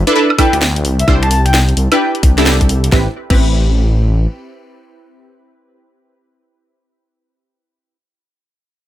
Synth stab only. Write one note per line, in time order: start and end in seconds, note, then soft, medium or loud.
0.07 0.14 D4 loud
0.07 0.14 E4 medium
0.07 0.14 A4 medium
0.07 0.14 B4 loud
0.15 0.30 D4 medium
0.15 0.30 E4 medium
0.15 0.30 A4 medium
0.15 0.30 B4 loud
0.38 0.59 D4 medium
0.38 0.59 E4 medium
0.38 0.59 A4 medium
0.38 0.59 B4 loud
1.08 1.28 D4 medium
1.08 1.28 E4 medium
1.08 1.28 G4 medium
1.08 1.28 C5 loud
1.92 2.35 D4 medium
1.92 2.35 E4 medium
1.92 2.35 G4 medium
1.92 2.35 B4 loud
2.38 2.90 D4 medium
2.38 2.90 E4 medium
2.38 2.90 G4 medium
2.38 2.90 A4 loud
2.92 3.08 C4 medium
2.92 3.08 E4 medium
2.92 3.08 G4 medium
2.92 3.08 B4 loud
3.30 7.97 C4 medium
3.30 7.97 E4 medium
3.30 7.97 G4 medium
3.30 7.97 B4 medium